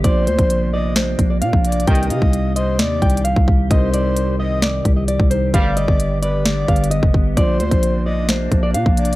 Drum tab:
HH |x-----x--x--x-----------x-----x-----x-----x-x-x-|x-x-x-x-----x-----x-----x-----x-x-x-x-----------|x-----x-----x-----------x-----x-----x-----x-----|x-----x-----x-----x-----x-----x-x-x-x-----------|
SD |------------------------o-----------------------|------------------------o-----------------------|------------------------o-----------------------|------------------------o-----------------------|
BD |o--------o--------------------o--------o--------|o--------o--------------------o--------o--o-----|o-----------------------------o--------o--------|o--------o--------------------o--------o--o-----|

HH |x-----x--x--x-----------x-----x-----x-----x-x---|
SD |------------------------o-----------------------|
BD |o--------o--------------------o--------o--------|